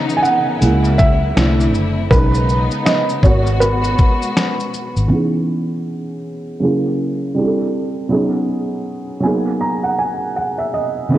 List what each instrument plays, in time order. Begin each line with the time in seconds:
Already playing: string section C#3 E3 B3 D#4, felt piano E3 B3 D#4
0.10 shaker
0.17 felt piano G#5
0.23 felt piano F#5, shaker
0.60 fingered electric bass C#2, string section F#3 A#3 E4, felt piano G#3 A#3 E4, closed hi-hat, shaker
0.85 shaker
0.98 felt piano E5, kick, shaker
1.35 fingered electric bass C2, string section D3 A3 C4 E4, felt piano A3 D4 E4, snare, closed hi-hat, shaker
1.60 shaker
1.74 fingered electric bass F#1, shaker
2.10 fingered electric bass B1, string section C#3 G#3 B3 D#4, felt piano G#3 C#4 D#4 B4, kick, closed hi-hat, shaker
2.34 shaker
2.49 shaker
2.71 shaker
2.85 felt piano D#5, snare, closed hi-hat, shaker
3.09 shaker
3.23 fingered electric bass G#1, string section B2 G#3 B3 F#4, felt piano B3 F#4 A#4 C#5, kick, shaker
3.47 shaker
3.60 felt piano B4, closed hi-hat, shaker
3.84 shaker
3.99 kick, shaker
4.22 shaker
4.37 snare, closed hi-hat, shaker
4.60 shaker
4.74 shaker
4.97 fingered electric bass G#1, shaker
5.08 felt piano E3 B3 C#4
5.13 felt piano D#4 G#4
6.59 felt piano C#3 F#3 A#3 C#4 E4 G#4
7.34 felt piano G3 C4 D4 E4 G#4
7.44 felt piano A4
8.09 felt piano F#3 B3 C#4 D#4 G#4
9.21 felt piano F#3 A#3 B3 G#5
9.25 felt piano D#4 G#4
9.61 felt piano A#5
9.84 felt piano F#5
9.99 felt piano G#5
10.36 felt piano F#5
10.58 felt piano E5
10.74 felt piano D#5
11.08 felt piano D#3 B3 C#4
11.13 felt piano E3 D#4 G#4